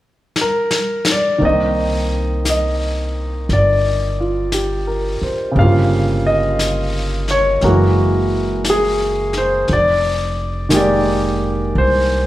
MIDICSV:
0, 0, Header, 1, 5, 480
1, 0, Start_track
1, 0, Key_signature, -3, "minor"
1, 0, Tempo, 1034483
1, 656, Time_signature, 4, 2, 24, 8
1, 5691, End_track
2, 0, Start_track
2, 0, Title_t, "Grand piano"
2, 0, Program_c, 0, 0
2, 191, Note_on_c, 0, 70, 61
2, 514, Note_off_c, 0, 70, 0
2, 518, Note_on_c, 0, 74, 59
2, 642, Note_on_c, 0, 51, 42
2, 650, Note_on_c, 0, 58, 39
2, 655, Note_on_c, 0, 60, 38
2, 662, Note_on_c, 0, 63, 47
2, 671, Note_off_c, 0, 74, 0
2, 673, Note_on_c, 0, 75, 62
2, 732, Control_c, 0, 64, 127
2, 1151, Note_off_c, 0, 75, 0
2, 1158, Note_on_c, 0, 75, 54
2, 1638, Note_on_c, 0, 74, 65
2, 1644, Note_off_c, 0, 75, 0
2, 1951, Note_on_c, 0, 65, 34
2, 2104, Note_on_c, 0, 67, 36
2, 2194, Note_off_c, 0, 65, 0
2, 2262, Note_on_c, 0, 70, 37
2, 2404, Note_off_c, 0, 67, 0
2, 2428, Note_on_c, 0, 72, 39
2, 2509, Note_off_c, 0, 70, 0
2, 2559, Note_on_c, 0, 49, 46
2, 2572, Note_off_c, 0, 51, 0
2, 2573, Note_on_c, 0, 55, 41
2, 2576, Note_off_c, 0, 58, 0
2, 2579, Note_off_c, 0, 60, 0
2, 2582, Note_off_c, 0, 63, 0
2, 2586, Control_c, 0, 64, 0
2, 2593, Note_on_c, 0, 77, 67
2, 2594, Note_on_c, 0, 58, 39
2, 2608, Note_on_c, 0, 65, 48
2, 2617, Note_off_c, 0, 74, 0
2, 2664, Control_c, 0, 64, 127
2, 2672, Note_off_c, 0, 72, 0
2, 2888, Note_off_c, 0, 77, 0
2, 2907, Note_on_c, 0, 75, 63
2, 3390, Note_on_c, 0, 73, 67
2, 3397, Note_off_c, 0, 75, 0
2, 3527, Note_off_c, 0, 49, 0
2, 3533, Note_off_c, 0, 73, 0
2, 3535, Note_off_c, 0, 55, 0
2, 3538, Note_on_c, 0, 52, 46
2, 3539, Note_off_c, 0, 58, 0
2, 3543, Control_c, 0, 64, 0
2, 3544, Note_on_c, 0, 56, 42
2, 3545, Note_on_c, 0, 70, 61
2, 3546, Note_on_c, 0, 58, 47
2, 3548, Note_on_c, 0, 66, 52
2, 3552, Note_off_c, 0, 65, 0
2, 3635, Control_c, 0, 64, 127
2, 4002, Note_off_c, 0, 70, 0
2, 4035, Note_on_c, 0, 68, 67
2, 4328, Note_off_c, 0, 68, 0
2, 4350, Note_on_c, 0, 72, 64
2, 4496, Note_off_c, 0, 52, 0
2, 4498, Note_off_c, 0, 56, 0
2, 4500, Note_off_c, 0, 58, 0
2, 4501, Note_off_c, 0, 66, 0
2, 4501, Control_c, 0, 64, 0
2, 4507, Note_off_c, 0, 72, 0
2, 4514, Note_on_c, 0, 74, 75
2, 4575, Control_c, 0, 64, 127
2, 4960, Note_on_c, 0, 51, 46
2, 4965, Note_off_c, 0, 74, 0
2, 4967, Note_on_c, 0, 56, 47
2, 4975, Note_on_c, 0, 58, 48
2, 4984, Note_on_c, 0, 67, 54
2, 4994, Note_on_c, 0, 74, 63
2, 5467, Note_on_c, 0, 72, 72
2, 5478, Note_off_c, 0, 74, 0
2, 5691, Note_off_c, 0, 51, 0
2, 5691, Note_off_c, 0, 56, 0
2, 5691, Note_off_c, 0, 58, 0
2, 5691, Note_off_c, 0, 67, 0
2, 5691, Note_off_c, 0, 72, 0
2, 5691, End_track
3, 0, Start_track
3, 0, Title_t, "Upright bass"
3, 0, Program_c, 1, 32
3, 658, Note_on_c, 1, 36, 58
3, 1603, Note_off_c, 1, 36, 0
3, 1620, Note_on_c, 1, 31, 65
3, 2402, Note_off_c, 1, 31, 0
3, 2579, Note_on_c, 1, 31, 71
3, 3519, Note_off_c, 1, 31, 0
3, 3539, Note_on_c, 1, 30, 60
3, 4477, Note_off_c, 1, 30, 0
3, 4498, Note_on_c, 1, 29, 66
3, 5437, Note_off_c, 1, 29, 0
3, 5454, Note_on_c, 1, 36, 62
3, 5691, Note_off_c, 1, 36, 0
3, 5691, End_track
4, 0, Start_track
4, 0, Title_t, "Muted upright bass strokes"
4, 2420, Note_on_c, 9, 29, 29
4, 2467, Note_off_c, 9, 29, 0
4, 5691, End_track
5, 0, Start_track
5, 0, Title_t, "Drums"
5, 166, Note_on_c, 9, 38, 47
5, 213, Note_off_c, 9, 38, 0
5, 328, Note_on_c, 9, 38, 51
5, 374, Note_off_c, 9, 38, 0
5, 486, Note_on_c, 9, 38, 68
5, 532, Note_off_c, 9, 38, 0
5, 650, Note_on_c, 9, 25, 27
5, 1138, Note_off_c, 9, 25, 0
5, 1138, Note_on_c, 9, 25, 24
5, 1138, Note_on_c, 9, 38, 36
5, 1138, Note_on_c, 9, 44, 43
5, 1184, Note_off_c, 9, 38, 0
5, 1184, Note_off_c, 9, 44, 0
5, 1621, Note_off_c, 9, 25, 0
5, 1621, Note_on_c, 9, 25, 22
5, 1621, Note_on_c, 9, 38, 21
5, 1668, Note_off_c, 9, 38, 0
5, 2098, Note_off_c, 9, 25, 0
5, 2098, Note_on_c, 9, 25, 25
5, 2098, Note_on_c, 9, 38, 34
5, 2098, Note_on_c, 9, 44, 39
5, 2144, Note_off_c, 9, 38, 0
5, 2144, Note_off_c, 9, 44, 0
5, 2579, Note_off_c, 9, 25, 0
5, 2579, Note_on_c, 9, 25, 35
5, 3059, Note_off_c, 9, 25, 0
5, 3059, Note_on_c, 9, 25, 31
5, 3059, Note_on_c, 9, 38, 35
5, 3059, Note_on_c, 9, 44, 40
5, 3105, Note_off_c, 9, 38, 0
5, 3105, Note_off_c, 9, 44, 0
5, 3377, Note_on_c, 9, 38, 23
5, 3423, Note_off_c, 9, 38, 0
5, 3532, Note_off_c, 9, 25, 0
5, 3532, Note_on_c, 9, 25, 23
5, 3532, Note_on_c, 9, 38, 20
5, 3578, Note_off_c, 9, 38, 0
5, 4011, Note_off_c, 9, 25, 0
5, 4011, Note_on_c, 9, 25, 31
5, 4011, Note_on_c, 9, 38, 37
5, 4011, Note_on_c, 9, 44, 37
5, 4057, Note_off_c, 9, 38, 0
5, 4057, Note_off_c, 9, 44, 0
5, 4330, Note_on_c, 9, 38, 24
5, 4376, Note_off_c, 9, 38, 0
5, 4490, Note_off_c, 9, 25, 0
5, 4490, Note_on_c, 9, 25, 31
5, 4490, Note_on_c, 9, 38, 24
5, 4537, Note_off_c, 9, 38, 0
5, 4966, Note_off_c, 9, 25, 0
5, 4966, Note_on_c, 9, 25, 29
5, 4966, Note_on_c, 9, 38, 35
5, 4966, Note_on_c, 9, 44, 43
5, 5012, Note_off_c, 9, 38, 0
5, 5012, Note_off_c, 9, 44, 0
5, 5448, Note_off_c, 9, 25, 0
5, 5448, Note_on_c, 9, 25, 29
5, 5691, Note_off_c, 9, 25, 0
5, 5691, End_track
0, 0, End_of_file